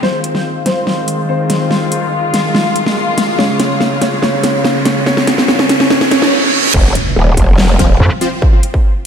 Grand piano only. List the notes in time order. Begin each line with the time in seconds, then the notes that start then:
0.03 C4 C5
0.66 C4 C5
1.29 C4 C5
3.39 C#4 C#5
4.02 C#4 C#5
4.23 C#4 C#5
4.85 C#4 C#5
5.06 C#4 C#5
5.48 C#4 C#5
5.90 C#4 C#5
6.11 C#4 C#5